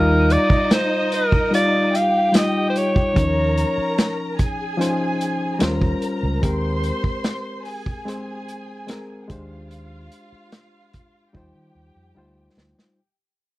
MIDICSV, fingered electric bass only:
0, 0, Header, 1, 3, 480
1, 0, Start_track
1, 0, Key_signature, -3, "major"
1, 0, Tempo, 818554
1, 1853, Time_signature, 4, 2, 24, 8
1, 7963, End_track
2, 0, Start_track
2, 0, Title_t, "Fingered electric bass"
2, 0, Program_c, 0, 33
2, 0, Note_on_c, 0, 39, 92
2, 209, Note_off_c, 0, 39, 0
2, 1856, Note_on_c, 0, 39, 94
2, 2127, Note_off_c, 0, 39, 0
2, 3293, Note_on_c, 0, 39, 91
2, 3474, Note_off_c, 0, 39, 0
2, 3654, Note_on_c, 0, 37, 86
2, 3744, Note_off_c, 0, 37, 0
2, 3771, Note_on_c, 0, 39, 91
2, 4044, Note_off_c, 0, 39, 0
2, 5453, Note_on_c, 0, 39, 87
2, 5908, Note_off_c, 0, 39, 0
2, 6654, Note_on_c, 0, 39, 96
2, 6745, Note_off_c, 0, 39, 0
2, 6772, Note_on_c, 0, 51, 87
2, 6864, Note_off_c, 0, 51, 0
2, 6890, Note_on_c, 0, 39, 83
2, 6982, Note_off_c, 0, 39, 0
2, 7011, Note_on_c, 0, 41, 77
2, 7103, Note_off_c, 0, 41, 0
2, 7132, Note_on_c, 0, 38, 76
2, 7315, Note_off_c, 0, 38, 0
2, 7372, Note_on_c, 0, 38, 86
2, 7464, Note_off_c, 0, 38, 0
2, 7963, End_track
3, 0, Start_track
3, 0, Title_t, "Muted fingered electric bass strokes"
3, 294, Note_on_c, 9, 29, 45
3, 352, Note_off_c, 9, 29, 0
3, 2215, Note_on_c, 9, 29, 44
3, 2273, Note_off_c, 9, 29, 0
3, 4128, Note_on_c, 9, 29, 44
3, 4186, Note_off_c, 9, 29, 0
3, 6054, Note_on_c, 9, 29, 44
3, 6112, Note_off_c, 9, 29, 0
3, 7963, End_track
0, 0, End_of_file